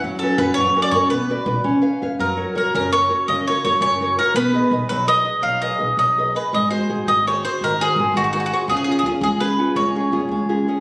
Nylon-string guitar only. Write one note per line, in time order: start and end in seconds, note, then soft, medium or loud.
0.04 0.39 F#3 medium
0.22 0.38 C#4 soft
0.22 0.39 F#4 soft
0.22 0.39 B4 soft
0.40 0.54 C#4 soft
0.40 0.54 F#4 soft
0.40 0.54 B4 medium
0.60 0.93 F#3 medium
0.76 0.94 C#4 soft
0.76 0.94 F#4 soft
0.76 0.95 A#4 medium
0.95 1.08 C#4 soft
0.95 1.08 F#4 soft
0.95 1.09 A#4 medium
1.13 1.30 B3 medium
1.30 1.45 F#4 soft
1.30 1.46 B4 soft
1.30 1.46 D5 medium
1.46 1.61 F#4 soft
1.46 1.61 B4 soft
1.46 1.62 D5 medium
1.64 2.00 C#4 medium
1.82 2.01 B4 soft
1.82 2.02 C#5 soft
1.82 2.01 F5 soft
2.02 2.16 B4 soft
2.02 2.17 C#5 soft
2.02 2.17 F5 soft
2.20 2.55 F#3 medium
2.37 2.54 F#4 soft
2.37 2.54 A#4 soft
2.37 2.55 C#5 soft
2.55 2.85 F#4 soft
2.55 2.85 A#4 soft
2.55 2.85 C#5 soft
2.74 3.10 C#3 medium
2.93 3.08 F#4 soft
2.93 3.09 A#4 soft
2.93 3.10 C#5 soft
3.10 3.39 F#4 soft
3.10 3.39 A#4 soft
3.10 3.40 C#5 soft
3.29 3.64 C#3 medium
3.49 3.64 F#4 soft
3.49 3.65 A#4 soft
3.49 3.65 C#5 medium
3.65 3.93 F#4 soft
3.65 3.94 A#4 soft
3.65 3.94 C#5 medium
3.82 4.17 C#3 medium
4.01 4.18 F#4 soft
4.01 4.17 A#4 soft
4.01 4.19 C#5 medium
4.18 4.33 F#4 soft
4.18 4.32 A#4 soft
4.18 4.33 C#5 medium
4.36 4.71 B3 medium
4.53 4.71 G#4 soft
4.53 4.71 B4 soft
4.53 4.72 D#5 medium
4.72 5.01 G#4 soft
4.72 5.01 B4 soft
4.72 5.02 D#5 medium
4.91 5.25 F#3 medium
5.07 5.23 G#4 soft
5.07 5.24 B4 soft
5.07 5.24 D#5 medium
5.25 5.54 G#4 soft
5.25 5.54 B4 soft
5.25 5.54 D#5 medium
5.42 5.78 F#3 medium
5.62 5.77 G#4 soft
5.62 5.78 B4 soft
5.62 5.78 D#5 soft
5.79 6.09 G#4 soft
5.79 6.09 B4 soft
5.79 6.09 D#5 soft
5.99 6.34 F#3 soft
6.18 6.34 G#4 soft
6.18 6.34 B4 soft
6.18 6.34 D#5 soft
6.35 6.49 G#4 soft
6.35 6.50 B4 soft
6.35 6.50 D#5 soft
6.53 6.89 G#3 medium
6.71 6.89 F#4 soft
6.71 6.88 G#4 soft
6.71 6.89 C5 soft
6.89 7.19 F#4 soft
6.89 7.19 G#4 soft
6.89 7.20 C5 soft
7.08 7.43 D#3 soft
7.27 7.43 F#4 soft
7.27 7.44 G#4 soft
7.27 7.44 C5 soft
7.45 7.73 F#4 soft
7.45 7.73 G#4 soft
7.45 7.73 C5 soft
7.64 7.98 D#3 medium
7.81 7.97 F#4 soft
7.81 7.99 G#4 soft
7.81 7.98 C5 soft
7.98 8.26 F#4 soft
7.98 8.27 G#4 soft
7.98 8.27 C5 medium
8.16 8.50 D#3 medium
8.34 8.52 F#4 soft
8.34 8.51 G#4 soft
8.34 8.52 C5 soft
8.53 8.66 F#4 soft
8.53 8.66 G#4 soft
8.53 8.66 C5 soft
8.71 9.04 C#3 medium
8.88 9.05 C#4 soft
8.88 9.05 F4 soft
8.88 9.06 G#4 soft
9.06 9.34 C#4 soft
9.06 9.34 F4 soft
9.06 9.35 G#4 soft
9.23 9.57 G#3 medium
9.40 9.57 C#4 soft
9.40 9.59 F4 soft
9.40 9.58 G#4 soft
9.59 9.87 C#4 soft
9.59 9.88 F4 soft
9.59 9.88 G#4 soft
9.76 10.11 G#3 medium
9.95 10.12 C#4 soft
9.95 10.11 F4 soft
9.95 10.12 G#4 soft
10.13 10.42 C#4 soft
10.13 10.42 F4 soft
10.13 10.42 G#4 soft
10.31 10.67 G#3 medium
10.49 10.67 C#4 soft
10.49 10.67 F4 soft
10.49 10.67 G#4 soft
10.68 10.80 C#4 soft
10.68 10.80 F4 soft
10.68 10.80 G#4 soft